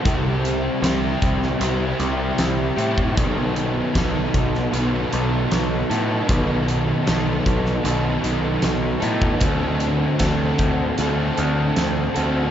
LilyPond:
<<
  \new Staff \with { instrumentName = "Overdriven electric guitar" } { \time 4/4 \key b \phrygian \tempo 4 = 77 <c g c' e' g'>4 <g c' e' g'>4 <c g c' e' g'>8 <c' e' g'>4 <c' e' g'>8 | <b, dis fis b dis' a'>4 <fis b dis' a'>4 <b, dis fis b dis' a'>8 <fis b dis' a'>4 <fis b dis' a'>8 | <b, dis fis b dis' a'>4 <fis b dis' a'>4 <b, dis fis b dis' a'>8 <fis b dis' a'>4 <fis b dis' a'>8 | <d a c' fis' a'>4 <a c' fis' a'>4 <d a c' fis' a'>8 <c' fis' a'>4 <c' fis' a'>8 | }
  \new Staff \with { instrumentName = "Picked electric bass" } { \clef bass \time 4/4 \key b \phrygian c,4 c,8 c,8 c,8 c,8 c,8 a,8 | b,,4 b,,8 b,,8 b,,8 b,,8 b,,8 a,8 | b,,4 b,,8 b,,8 b,,8 b,,8 b,,8 a,8 | d,4 d,8 d,8 d,8 d,8 d,8 d,8 | }
  \new DrumStaff \with { instrumentName = "Drums" } \drummode { \time 4/4 <hh bd>8 hh8 <hh sn>8 <hh bd>16 sn16 hh8 hh8 <hh sn>8 hh16 bd16 | <hh bd>8 hh8 <hh bd sn>8 <hh bd>16 sn16 hh8 hh8 <hh sn>8 hh8 | <hh bd>8 hh8 <hh sn>8 <hh bd>16 sn16 hh8 hh8 <hh sn>8 hh16 bd16 | <hh bd>8 hh8 <hh bd sn>8 <hh bd>8 hh8 hh8 <hh sn>8 hh8 | }
>>